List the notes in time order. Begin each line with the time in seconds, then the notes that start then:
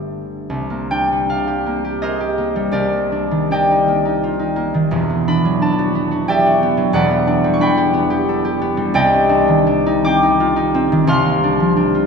Already playing: G1 G3 A3 A#3 D4 G4 A#4
0.50 C2
0.70 A#3
0.91 D4 G5
1.12 G3
1.29 D4 F5
1.48 G4
1.66 A#3
1.85 G4
2.02 G#4 A#4 C5 D#5
2.20 G4
2.38 A#3
2.56 G3
2.72 C2 G4 A#4 D5
2.93 A#3
3.12 D4
3.31 D#3
3.51 D4 D5 D#5 G5
3.71 D#4
3.88 A#3
4.05 D#4
4.24 F4
4.39 D#4
4.56 A#3
4.74 D#3
4.91 E1 E2
5.10 B3
5.28 D4 B5
5.45 F#3
5.61 D4 A5
5.79 F#4
5.95 B3
6.11 F#4
6.28 G4 D5 E5 G5
6.46 F#4
6.63 B3
6.77 F#3
6.93 E1 E2 B4 D5 F#5
7.11 B3
7.27 D4
7.44 G3
7.54 C#6
7.60 D4 F#5 G5 B5
7.77 G4
7.93 B3
8.10 G4
8.29 A4
8.45 G4
8.62 B3
8.77 G3
8.94 C2 D5 D#5 G5
9.13 C4
9.29 D4
9.48 D#3
9.67 D4
9.86 D#4
10.05 C4 G5 D6
10.23 D#4
10.40 F4
10.56 D#4
10.74 C4
10.92 D#3
11.07 C2 F5 C6
11.26 A#3
11.44 D4
11.60 F3
11.77 D4
11.95 F4